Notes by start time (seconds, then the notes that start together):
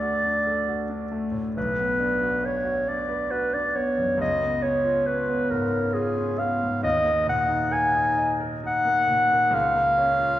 Already playing: D2 A3 D4 F#4 A4 D5
0.02 F#4
0.25 D4
0.47 A4
0.68 F#4
0.89 D4
1.12 A3
1.31 A2
1.57 B1 B4
1.79 B3
2.00 D4
2.22 F#4
2.43 B4 C#5
2.64 F#4
2.87 D4 D5
3.09 B4
3.31 F#4 B4
3.54 D4 D5
3.76 B3 C#5
3.98 F#2
4.17 C#2 D#5
4.42 B3
4.62 C#4 C#5
4.85 F4
5.06 C#4 B4
5.29 B3
5.50 G#2 A#4
5.72 C#4
5.94 F4 G#4
6.16 C#4
6.39 B3 F5
6.63 G#2
6.83 D#2 D#5
7.05 A#3
7.27 A#2 F#5
7.49 D#4
7.71 A#4 G#5
7.95 D#4
8.18 D#5
8.40 A#4
8.64 D#4 F#5
8.85 A#3
9.08 A#2
9.32 A#3
9.51 C#2 F5
9.75 A#3
9.98 C#4
10.20 F4